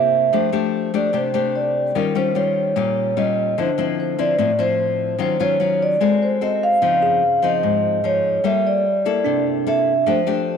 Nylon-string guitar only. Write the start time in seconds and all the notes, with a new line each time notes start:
Already playing: C3 A#3 E4 G4
0.33 F3 A3 D4 G4
0.53 A3 D4 G4
0.94 A3 D4 G4
1.13 C3 A3 D4 G4
1.34 A3 D4 G4
1.95 D#3 G3 C#4 F4
2.15 G3 C#4 F4
2.35 G3 C#4 F4
2.76 A#2 G3 C#4 F4
3.17 G3 C#4 F4
3.58 D3 F3 C4 E4
3.78 F3 C4 E4
4.18 F3 C4 E4
4.38 A2 F3 C4 E4
4.59 F3 C4 E4
5.19 D#3 F#3 C#4 F4
5.40 F#3 C#4 F4
5.60 F#3 C#4 F4
6.01 G#3 C4 F#4 A4
6.41 C4 F#4 A4
6.82 C#3 F3 C4 D#4
7.42 F3 C4 D#4
7.63 G#2
8.04 F3 D#4
8.44 G3 A#3 F4 A4
9.05 A#3 E4 A4
9.25 C3
9.67 A#3 E4 A4
10.06 F3 A3 D4 G4
10.27 A3 D4 G4